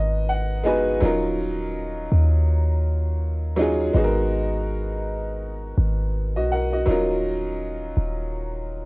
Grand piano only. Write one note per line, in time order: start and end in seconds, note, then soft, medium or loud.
0.00 0.64 G#3 medium
0.00 0.65 B3 medium
0.00 0.66 D#4 medium
0.00 0.67 F#4 medium
0.00 1.04 A#4 medium
0.00 0.27 D#5 medium
0.29 0.63 F#5 medium
0.64 0.97 G#3 medium
0.64 0.98 B3 medium
0.64 0.98 D#4 medium
0.64 0.99 F#4 medium
0.64 1.00 G#5 medium
0.68 1.00 B4 loud
1.00 2.32 F#3 medium
1.00 2.33 C#4 medium
1.00 2.33 D#4 medium
1.00 2.34 F4 medium
1.05 2.35 A#4 medium
3.56 3.90 F#3 medium
3.56 3.90 C#4 medium
3.56 3.91 D#4 medium
3.56 3.92 F4 medium
3.61 3.92 G#4 loud
3.93 5.25 G#3 medium
3.93 5.25 B3 medium
3.93 5.26 D#4 medium
3.93 5.27 F#4 medium
3.98 4.04 G#4 medium
4.04 5.30 A#4 medium
6.36 6.51 F#4 medium
6.36 6.50 D#5 medium
6.52 6.72 A#4 medium
6.52 6.71 F#5 medium
6.73 7.07 F#4 medium
6.73 7.07 D#5 medium
6.86 8.18 F#3 medium
6.86 8.18 C#4 medium
6.86 8.19 D#4 medium
6.86 8.19 F4 medium
6.91 8.20 A#4 medium